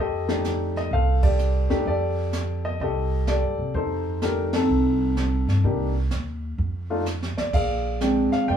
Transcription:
Already playing: upright bass F2, grand piano D#5
0.00 grand piano G4 A4
0.28 grand piano A3 D4 D#4 G4, snare
0.44 snare, hi-hat pedal
0.76 grand piano D#5, snare
0.91 upright bass C2, grand piano A4 C5 F5, brush sweep, kick
1.23 grand piano G4 A4 D5, kick, ride
1.39 hi-hat pedal
1.69 upright bass E2, grand piano A3 D4 D#4 G4, snare
1.86 upright bass F2, grand piano G4 A4 D5, brush sweep, kick
2.33 snare, hi-hat pedal
2.65 grand piano D#5
2.80 upright bass C2, grand piano G4 A4 D#5, brush sweep, kick
3.27 grand piano G4 A4 D5, snare, hi-hat pedal
3.42 upright bass G2
3.58 upright bass C3
3.74 upright bass F2, grand piano D#4 A4 C5, brush sweep, kick
4.22 grand piano A3 D4 D#4 G4 A#4, snare, hi-hat pedal
4.53 grand piano C4 A4, snare, ride
4.57 grand piano D#4
4.69 upright bass C2, brush sweep
5.16 snare, hi-hat pedal
5.47 upright bass G2, snare
5.64 upright bass C2, grand piano A#3 D4 D#4 G4, brush sweep, kick
6.11 upright bass D#2, snare, hi-hat pedal
6.58 upright bass F2, brush sweep, kick
6.90 grand piano A3 D4 D#4 F4
7.06 snare, hi-hat pedal
7.23 snare
7.38 grand piano D5, muted upright bass stroke, snare
7.53 upright bass A#1, grand piano G#4 D5 F5, brush sweep, kick, crash
8.01 grand piano G#3 C4 D4 G5, snare, hi-hat pedal
8.32 grand piano F5, snare
8.48 upright bass F1, grand piano C5 D5 G5, brush sweep, kick

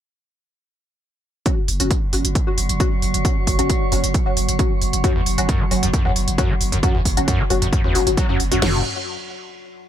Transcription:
1.46 synth drone F#3 F#4, synth stab F#3 C#4 F#4, kick, closed hi-hat
1.68 808-style bass F#1, open hi-hat
1.80 808-style bass F#1, synth stab F#3 C#4 F#4, closed hi-hat
1.91 kick, closed hi-hat
2.13 808-style bass F#1, synth stab F#3 C#4 F#4, open hi-hat
2.25 808-style bass F#1, closed hi-hat
2.35 kick, closed hi-hat
2.47 synth stab F#3 C#4 F#4
2.58 808-style bass F#1, open hi-hat
2.69 808-style bass F#1, closed hi-hat
2.80 synth stab F#3 C#4 F#4, kick, closed hi-hat
3.02 808-style bass F#1, open hi-hat
3.14 808-style bass F#1, closed hi-hat
3.25 synth stab F#3 C#4 F#4, kick, closed hi-hat
3.47 808-style bass F#1, kick, open hi-hat
3.59 808-style bass F#1, synth stab F#3 C#4 F#4, closed hi-hat
3.70 kick, closed hi-hat
3.92 808-style bass F#1, synth stab F#3 C#4 F#4, open hi-hat
4.04 808-style bass F#1, closed hi-hat
4.14 kick, closed hi-hat
4.26 synth stab F#3 C#4 F#4
4.37 808-style bass F#1, open hi-hat
4.49 808-style bass F#1, closed hi-hat
4.59 synth stab F#3 C#4 F#4, kick, closed hi-hat
4.82 808-style bass F#1, open hi-hat
4.93 808-style bass F#1, closed hi-hat
5.04 acid bass F#2, synth stab F#3 C#4 F#4, kick, closed hi-hat
5.16 acid bass E2
5.26 808-style bass F#1, open hi-hat
5.38 808-style bass F#1, synth stab F#3 C#4 F#4, closed hi-hat
5.49 acid bass F#2, kick, closed hi-hat
5.60 acid bass F#3
5.71 808-style bass F#1, synth stab F#3 C#4 F#4, open hi-hat
5.83 808-style bass F#1, acid bass F#2, closed hi-hat
5.94 acid bass F#2, kick, closed hi-hat
6.05 acid bass E2, synth stab F#3 C#4 F#4
6.16 808-style bass F#1, open hi-hat
6.28 808-style bass F#1, closed hi-hat
6.38 acid bass F#2, synth stab F#3 C#4 F#4, kick, closed hi-hat
6.50 acid bass F#3
6.61 808-style bass F#1, open hi-hat
6.72 808-style bass F#1, acid bass F#2, closed hi-hat
6.83 acid bass F#2, synth stab F#3 C#4 F#4, kick, closed hi-hat
6.95 acid bass E2
7.05 808-style bass F#1, kick, open hi-hat
7.17 808-style bass F#1, synth stab F#3 C#4 F#4, closed hi-hat
7.28 acid bass F#2, kick, closed hi-hat
7.40 acid bass F#3
7.50 808-style bass F#1, synth stab F#3 C#4 F#4, open hi-hat
7.62 808-style bass F#1, acid bass F#2, closed hi-hat
7.73 acid bass F#2, kick, closed hi-hat
7.84 acid bass E2, synth stab F#3 C#4 F#4
7.95 acid bass F#1, 808-style bass F#1, synth stab F#3 C#4 F#4, open hi-hat
8.07 808-style bass F#1, synth stab F#3 C#4 F#4, closed hi-hat
8.17 acid bass F#3, kick, closed hi-hat
8.29 acid bass F#2, synth stab F#3 C#4 F#4
8.40 808-style bass F#1, open hi-hat
8.51 808-style bass F#1, acid bass F#2, synth stab F#3 C#4 F#4, closed hi-hat
8.62 808-style bass F#1, acid bass F#2, synth stab F#3 C#4 F#4, snare, floor tom, crash

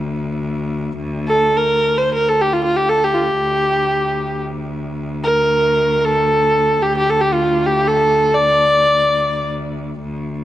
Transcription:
Already playing: cello D2
1.28 kamancheh A4
1.57 kamancheh A#4
1.98 kamancheh C5
2.14 kamancheh A#4
2.29 kamancheh A4
2.41 kamancheh G4
2.53 kamancheh F4
2.64 kamancheh F4
2.76 kamancheh G4
2.89 kamancheh A4
3.04 kamancheh G4
3.13 kamancheh F4 G4
3.38 cello D2
5.24 kamancheh A#4
6.00 kamancheh A#4
6.04 kamancheh A4
6.82 kamancheh G4
6.97 kamancheh G4
7.10 kamancheh A4
7.21 kamancheh G4
7.33 kamancheh F4
7.66 kamancheh G4
7.88 kamancheh A4
8.34 kamancheh D5
10.02 cello D2

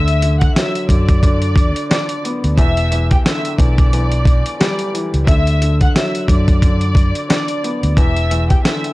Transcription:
Already playing: fingered electric bass D2, upright piano D3, violin section E5 E6
0.08 closed hi-hat
0.22 upright piano D3, closed hi-hat
0.40 violin section F#5 F#6, kick, closed hi-hat
0.55 upright piano F#3, violin section E5 E6, snare, closed hi-hat
0.75 closed hi-hat
0.89 fingered electric bass F#2, upright piano D3, violin section D5 D6, kick, closed hi-hat
1.08 kick, closed hi-hat
1.23 upright piano D3, kick, closed hi-hat
1.42 closed hi-hat
1.56 kick, closed hi-hat
1.76 closed hi-hat
1.90 upright piano D4, violin section D5 D6, snare, closed hi-hat
2.09 closed hi-hat
2.24 upright piano B3, closed hi-hat
2.44 fingered electric bass D2, closed hi-hat
2.57 fingered electric bass E1, upright piano E2, violin section E5 E6, kick, closed hi-hat
2.77 closed hi-hat
2.91 upright piano E2, closed hi-hat
3.11 violin section G4 G5, kick, closed hi-hat
3.25 upright piano D3, violin section E5 E6, snare, closed hi-hat
3.45 closed hi-hat
3.58 fingered electric bass B1, upright piano E2, violin section D5 D6, kick, closed hi-hat
3.78 kick, closed hi-hat
3.93 upright piano E2, closed hi-hat
4.11 closed hi-hat
4.25 kick, closed hi-hat
4.46 closed hi-hat
4.58 upright piano G3, violin section D5 D6, snare, closed hi-hat
4.79 closed hi-hat
4.94 upright piano E3, closed hi-hat
5.14 fingered electric bass C#2, closed hi-hat
5.27 fingered electric bass D2, upright piano D3, violin section E5 E6, kick, closed hi-hat
5.47 closed hi-hat
5.62 upright piano D3, closed hi-hat
5.81 violin section F#5 F#6, kick, closed hi-hat
5.95 upright piano F#3, violin section E5 E6, snare, closed hi-hat
6.15 closed hi-hat
6.28 fingered electric bass F#2, upright piano D3, violin section D5 D6, kick, closed hi-hat
6.48 kick, closed hi-hat
6.62 upright piano D3, kick, closed hi-hat
6.81 closed hi-hat
6.95 kick, closed hi-hat
7.15 closed hi-hat
7.29 upright piano D4, violin section D5 D6, snare, closed hi-hat
7.48 closed hi-hat
7.63 upright piano B3, closed hi-hat
7.83 fingered electric bass D2, closed hi-hat
7.97 fingered electric bass E1, upright piano E2, violin section E5 E6, kick, closed hi-hat
8.16 closed hi-hat
8.31 upright piano E2, closed hi-hat
8.50 violin section G4 G5, kick, closed hi-hat
8.64 upright piano D3, violin section E5 E6, snare, closed hi-hat
8.84 closed hi-hat

